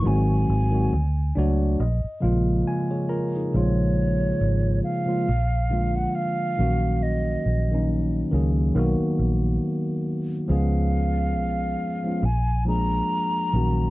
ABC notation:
X:1
M:4/4
L:1/16
Q:"Swing 16ths" 1/4=69
K:Bbm
V:1 name="Flute"
a6 z8 z2 | [K:Bbphr] d6 f4- f g f4 | e4 z12 | f8 a2 b6 |]
V:2 name="Tine electric piano"
z6 =d2 e2 f2 a [A_d] [FBb] [EA]- | [K:Bbphr] [EA] z12 z3 | z16 | z16 |]
V:3 name="Tine electric piano"
[E,G,A,CG]2 z [E,G,A,CG] z2 [^F,=A,=D^F^c]2 z2 [_D,=F,_A,B,=F]4- [D,F,A,B,F] z | [K:Bbphr] [D,F,A,B,F]6 z [D,F,A,B,F] z2 [=D,F,A,B,F]4 [E,G,B,_DG]2- | [E,G,B,DG]2 z [E,G,B,DE]2 z [E,G,B,DA]2 [^D,^F,^A,=B,^F]6- [D,F,A,B,F] z | [F,A,CDA]6 z [F,A,CDF] z2 [F,A,B,=DA]4 [E,G,B,_DG]2 |]
V:4 name="Fingered electric bass" clef=bass
A,,,2 A,,,2 =D,,2 ^C,,2 B,,, z B,,,2 z4 | [K:Bbphr] B,,,4 A,,,2 z2 B,,,4 z2 B,,,2- | B,,,2 B,,,4 D,,2 =B,,, z ^A,,,2 z4 | D,,4 C,,2 z2 B,,,4 z2 B,,,2 |]